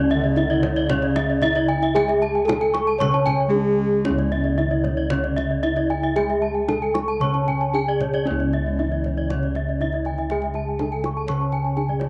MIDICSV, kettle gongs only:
0, 0, Header, 1, 2, 480
1, 0, Start_track
1, 0, Tempo, 525855
1, 1779, Time_signature, 4, 2, 24, 8
1, 8017, Tempo, 507185
1, 9457, Tempo, 483871
1, 11231, End_track
2, 0, Start_track
2, 0, Title_t, "Kettle gongs"
2, 0, Program_c, 0, 14
2, 0, Note_on_c, 0, 37, 81
2, 0, Note_on_c, 0, 49, 54
2, 0, Note_on_c, 0, 61, 52
2, 301, Note_off_c, 0, 49, 0
2, 337, Note_on_c, 0, 62, 44
2, 410, Note_off_c, 0, 62, 0
2, 1262, Note_off_c, 0, 61, 0
2, 1288, Note_on_c, 0, 62, 30
2, 1361, Note_off_c, 0, 62, 0
2, 1777, Note_on_c, 0, 68, 52
2, 2267, Note_on_c, 0, 62, 36
2, 2340, Note_off_c, 0, 62, 0
2, 2726, Note_off_c, 0, 37, 0
2, 2742, Note_on_c, 0, 49, 55
2, 3183, Note_off_c, 0, 68, 0
2, 3220, Note_on_c, 0, 62, 32
2, 3293, Note_off_c, 0, 62, 0
2, 3705, Note_on_c, 0, 61, 56
2, 3747, Note_on_c, 0, 37, 89
2, 4146, Note_off_c, 0, 49, 0
2, 4178, Note_on_c, 0, 62, 35
2, 4251, Note_off_c, 0, 62, 0
2, 5107, Note_off_c, 0, 61, 0
2, 5140, Note_on_c, 0, 62, 31
2, 5213, Note_off_c, 0, 62, 0
2, 5626, Note_on_c, 0, 68, 49
2, 6103, Note_on_c, 0, 62, 42
2, 6176, Note_off_c, 0, 62, 0
2, 6570, Note_off_c, 0, 37, 0
2, 6572, Note_on_c, 0, 49, 51
2, 7029, Note_off_c, 0, 68, 0
2, 7063, Note_on_c, 0, 62, 35
2, 7136, Note_off_c, 0, 62, 0
2, 7535, Note_on_c, 0, 61, 59
2, 7581, Note_on_c, 0, 37, 94
2, 7979, Note_off_c, 0, 49, 0
2, 8029, Note_on_c, 0, 62, 46
2, 8105, Note_off_c, 0, 62, 0
2, 8946, Note_off_c, 0, 61, 0
2, 8984, Note_on_c, 0, 62, 31
2, 9060, Note_off_c, 0, 62, 0
2, 9469, Note_on_c, 0, 68, 48
2, 9953, Note_on_c, 0, 62, 42
2, 10033, Note_off_c, 0, 62, 0
2, 10413, Note_off_c, 0, 37, 0
2, 10440, Note_on_c, 0, 49, 54
2, 10873, Note_off_c, 0, 68, 0
2, 10915, Note_on_c, 0, 62, 36
2, 10995, Note_off_c, 0, 62, 0
2, 11231, Note_off_c, 0, 49, 0
2, 11231, End_track
0, 0, End_of_file